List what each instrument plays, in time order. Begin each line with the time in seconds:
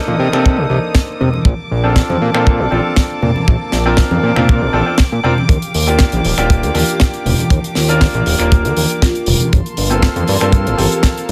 Already playing: grand piano A#3 D4 D#4 A4, violin section C5 D#6
0.08 analog synth bass A#2, high conga
0.19 analog synth bass C3
0.32 analog synth bass C3, grand piano A#3 D4 D#4 A4, finger snap
0.46 kick
0.58 analog synth bass C2
0.70 analog synth bass C2, high conga
0.95 kick, snare
1.21 analog synth bass C3, low conga
1.34 high conga
1.45 analog synth bass A#1, violin section A#3 A5 D6, kick
1.71 analog synth bass A#1
1.84 grand piano C4 D4 F4 A4
1.96 finger snap, kick, snare
2.10 analog synth bass F2, high conga
2.22 analog synth bass A#2
2.34 analog synth bass A#2, grand piano C4 D4 F4 A4, finger snap
2.47 kick
2.60 analog synth bass A#1
2.71 analog synth bass A#1, grand piano C4 D4 F4 A4, high conga
2.96 kick, snare
3.23 analog synth bass A#2, low conga
3.36 high conga
3.48 analog synth bass A#1, kick
3.72 analog synth bass A#1, snare
3.86 grand piano C4 D4 F4 A#4
3.97 finger snap, kick, snare
4.11 analog synth bass F2, high conga
4.23 analog synth bass A#2
4.36 analog synth bass A#2, grand piano C4 D4 F4 A#4, finger snap, low conga
4.49 kick
4.62 analog synth bass A#1
4.73 analog synth bass A#1, grand piano C4 D4 F4 A4, high conga
4.86 grand piano C4 D4 F4 A4
4.98 kick, snare
5.12 analog synth bass A#2
5.24 grand piano C4 D4 F4 A#4, low conga
5.38 high conga
5.49 analog synth bass D#2, violin section G4 F5, kick, closed hi-hat
5.62 closed hi-hat
5.74 analog synth bass D#2, open hi-hat
5.87 grand piano A#3 D4 F4 G4, closed hi-hat
5.99 finger snap, kick, snare, closed hi-hat
6.12 analog synth bass A#1, closed hi-hat, high conga
6.25 analog synth bass D#1, open hi-hat
6.37 analog synth bass D#1, grand piano A#3 D4 F4 G4, finger snap, closed hi-hat
6.50 kick, closed hi-hat
6.63 analog synth bass D#2, closed hi-hat
6.74 analog synth bass D#2, grand piano A#3 D4 F4 G4, vibraphone G4, open hi-hat, high conga
6.88 closed hi-hat
7.00 kick, snare, closed hi-hat
7.14 closed hi-hat
7.25 analog synth bass D#1, open hi-hat, low conga
7.39 closed hi-hat, high conga
7.50 analog synth bass D#2, kick, closed hi-hat
7.64 closed hi-hat
7.75 analog synth bass D#2, vibraphone F4, snare, open hi-hat
7.89 grand piano A#3 D4 F4 A#4, closed hi-hat
8.01 finger snap, kick, snare, open hi-hat
8.14 analog synth bass A#1, closed hi-hat, high conga
8.26 analog synth bass D#1, open hi-hat
8.38 analog synth bass D#1, grand piano A#3 D4 F4 A#4, finger snap, closed hi-hat
8.52 kick, closed hi-hat
8.65 analog synth bass D#2, closed hi-hat
8.77 analog synth bass D#2, open hi-hat, high conga
8.90 closed hi-hat
9.02 vibraphone F4, kick, snare, closed hi-hat
9.15 closed hi-hat
9.26 analog synth bass D#1, open hi-hat, low conga
9.40 closed hi-hat, high conga
9.53 analog synth bass G1, violin section A#3 F5 A5 C6, kick, closed hi-hat
9.66 closed hi-hat
9.77 analog synth bass G1, open hi-hat
9.90 grand piano A#3 C4 F4 A4, closed hi-hat
10.02 finger snap, kick, snare, closed hi-hat
10.16 analog synth bass F2, closed hi-hat, high conga
10.28 analog synth bass G2, open hi-hat
10.40 analog synth bass G2, grand piano A#3 C4 F4 A4, finger snap, closed hi-hat
10.52 kick, closed hi-hat
10.67 analog synth bass G1, closed hi-hat
10.77 analog synth bass G1, grand piano A#3 C4 F4 A4, vibraphone G4, open hi-hat, high conga
10.92 closed hi-hat
11.03 kick, snare, closed hi-hat
11.18 closed hi-hat